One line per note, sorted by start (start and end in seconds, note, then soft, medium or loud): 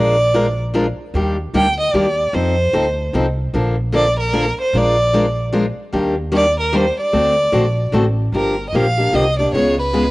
0.00 0.90 A#1 medium
0.00 0.15 F3 medium
0.00 0.15 G#3 medium
0.00 0.15 D4 medium
0.00 0.15 F4 medium
0.00 0.16 A#4 medium
0.00 0.60 D5 medium
0.34 0.45 F3 medium
0.34 0.45 G#3 medium
0.34 0.45 D4 medium
0.34 0.45 F4 loud
0.34 0.46 A#4 loud
0.74 0.85 F3 medium
0.74 0.85 G#3 medium
0.74 0.85 D4 medium
0.74 0.85 F4 medium
0.74 0.86 A#4 loud
1.14 1.46 D#2 medium
1.14 1.35 D#3 medium
1.14 1.35 G3 medium
1.14 1.35 A#3 medium
1.14 1.36 D4 medium
1.14 1.36 G4 medium
1.53 1.88 D2 medium
1.53 1.65 D#3 medium
1.53 1.65 G3 medium
1.53 1.66 A#3 medium
1.53 1.66 D4 loud
1.53 1.66 G4 loud
1.53 1.78 G5 loud
1.80 1.95 D#5 loud
1.94 2.28 D#2 medium
1.94 2.05 D#3 medium
1.94 2.05 G3 medium
1.94 2.05 A#3 medium
1.94 2.05 D4 medium
1.94 2.06 G4 loud
1.94 2.36 D5 medium
2.33 2.65 F2 medium
2.33 2.54 F3 medium
2.33 2.55 C4 medium
2.33 2.55 D#4 medium
2.33 2.55 A4 medium
2.33 3.14 C5 medium
2.73 3.07 D2 medium
2.73 2.85 F3 medium
2.73 2.85 C4 medium
2.73 2.85 D#4 medium
2.73 2.85 A4 medium
3.13 3.47 C2 medium
3.13 3.25 F3 medium
3.13 3.25 C4 medium
3.13 3.25 D#4 medium
3.13 3.26 A4 medium
3.54 4.49 A#1 medium
3.54 3.75 D3 medium
3.54 3.75 F3 medium
3.54 3.75 A#3 medium
3.54 3.75 D4 medium
3.54 3.75 A4 medium
3.92 4.04 D3 medium
3.92 4.04 F3 medium
3.92 4.05 A#3 medium
3.92 4.05 D4 medium
3.92 4.05 A4 medium
3.92 4.18 D5 loud
4.20 4.56 A#4 medium
4.33 4.44 D3 medium
4.33 4.44 F3 medium
4.33 4.45 A#3 medium
4.33 4.45 D4 medium
4.33 4.45 A4 medium
4.61 4.79 C5 medium
4.73 5.69 A#1 medium
4.73 4.95 F3 medium
4.73 4.95 G#3 medium
4.73 4.95 D4 medium
4.73 4.95 F4 medium
4.73 4.95 A#4 medium
4.77 5.40 D5 loud
5.13 5.24 F3 medium
5.13 5.25 G#3 medium
5.13 5.25 D4 medium
5.13 5.25 F4 medium
5.13 5.25 A#4 medium
5.52 5.64 F3 medium
5.52 5.64 G#3 medium
5.52 5.64 D4 loud
5.52 5.64 F4 loud
5.52 5.65 A#4 medium
5.92 6.89 D#2 medium
5.92 6.14 D#3 medium
5.92 6.14 G3 medium
5.92 6.14 A#3 medium
5.92 6.14 D4 medium
5.92 6.14 G4 medium
6.32 6.43 D#3 medium
6.32 6.43 G3 loud
6.32 6.44 A#3 medium
6.32 6.44 D4 medium
6.32 6.44 G4 loud
6.36 6.58 D5 loud
6.60 6.77 A#4 medium
6.73 6.84 D#3 loud
6.73 6.84 G3 medium
6.73 6.84 A#3 loud
6.73 6.84 D4 medium
6.73 6.85 G4 loud
6.73 6.99 C5 medium
7.00 7.90 D5 loud
7.13 7.45 D2 medium
7.13 7.34 D3 medium
7.13 7.34 A3 medium
7.13 7.34 C4 medium
7.13 7.34 F#4 medium
7.13 7.34 A4 medium
7.52 7.87 A#1 medium
7.52 7.64 D3 medium
7.52 7.64 A3 medium
7.52 7.64 C4 medium
7.52 7.64 F#4 medium
7.52 7.64 A4 loud
7.92 8.26 A1 medium
7.92 8.04 D3 medium
7.92 8.04 A3 medium
7.92 8.04 C4 medium
7.92 8.04 F#4 medium
7.92 8.04 A4 loud
8.32 8.64 G1 medium
8.32 8.54 D3 medium
8.32 8.54 F3 medium
8.32 8.55 A#3 medium
8.32 8.55 D4 medium
8.32 8.55 G4 medium
8.32 8.66 A#4 medium
8.69 9.07 A#1 medium
8.69 8.77 D#5 medium
8.74 8.84 D3 medium
8.74 8.85 F3 medium
8.74 8.85 A#3 medium
8.74 8.85 D4 medium
8.74 8.85 G4 medium
8.74 9.17 F5 medium
8.98 9.13 A#3 soft
8.98 9.13 D4 medium
8.98 9.12 G4 medium
9.13 9.47 C2 medium
9.13 9.24 D3 medium
9.13 9.24 F3 medium
9.13 9.24 A#3 medium
9.13 9.24 D4 medium
9.13 9.25 G4 medium
9.13 9.38 D#5 medium
9.39 9.54 A#3 soft
9.39 9.53 D4 medium
9.39 9.53 G4 medium
9.39 9.52 D5 medium
9.52 10.11 C#2 medium
9.52 9.74 C#3 medium
9.52 9.74 G#3 medium
9.52 9.75 B3 medium
9.52 9.75 F4 medium
9.52 9.75 G#4 medium
9.52 9.77 C#5 medium
9.79 10.11 B4 medium
9.93 10.04 C#3 medium
9.93 10.04 G#3 medium
9.93 10.04 B3 medium
9.93 10.04 F4 medium
9.93 10.04 G#4 medium